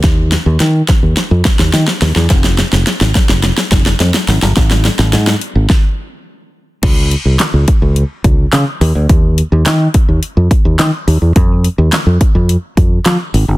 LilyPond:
<<
  \new Staff \with { instrumentName = "Fingered electric bass" } { \clef bass \time 4/4 \key f \minor \tempo 4 = 106 ees,8. ees,16 ees8 r16 ees,16 r16 f,16 r16 ees,16 ees16 r16 ees,16 e,16 | f,,8. f,,16 r16 aes,,16 r16 f,,8 r16 f,,8 f,16 r16 aes,,16 g,,16 | aes,,8. aes,,16 aes,8 r16 aes,,16 r2 | des,8. c,16 r16 des,16 r16 des,8 r16 des,8 des16 r16 ees,16 d,16 |
ees,8. ees,16 ees8 r16 ees,16 r16 f,16 r16 ees,16 ees16 r16 ees,16 e,16 | f,8. ees,16 r16 f,16 r16 f,8 r16 f,8 f16 r16 aes,,16 g,,16 | }
  \new DrumStaff \with { instrumentName = "Drums" } \drummode { \time 4/4 <hh bd sn>8 <hh sn>8 <hh sn>8 <hh bd sn>8 <hh sn>8 <hh bd sn>16 sn16 <hh sn>16 sn16 <hho sn>16 sn16 | <hh bd sn>16 sn16 <hh sn>16 sn16 <hh sn>16 sn16 <hh bd sn>16 sn16 <hh sn>16 sn16 <hh bd sn>16 sn16 <hh sn>16 sn16 <hho sn>16 sn16 | <hh bd sn>16 sn16 <hh sn>16 sn16 <hh sn>16 sn16 hh8 <bd sn>4 r4 | <cymc hh bd>8 hh8 <hc hh sn>8 <hh bd>8 hh8 <hh bd>8 <hc hh sn>8 hho8 |
<hh bd>8 hh8 <hc hh sn>8 <hh bd>8 hh8 <hh bd>8 <hc hh sn>8 hho8 | <hh bd>8 hh8 <hc hh sn>8 <hh bd>8 hh8 <hh bd>8 <hc hh sn>8 hho8 | }
>>